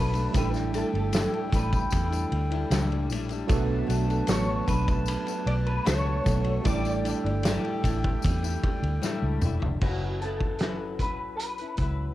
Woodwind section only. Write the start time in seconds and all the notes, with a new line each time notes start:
Already playing: B4 A5
0.35 A4 G5
3.48 B4 A5
6.65 A4 G5